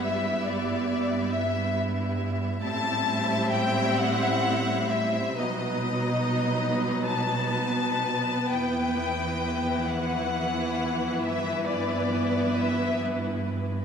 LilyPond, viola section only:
\new Staff \with { instrumentName = "Viola section" } { \time 6/8 \key e \minor \tempo 4. = 44 << { b2. | c'2. | b2.~ | b2. |
b2. | } \\ { g2. | g2. | fis2. | e2.~ |
e2. | } >> }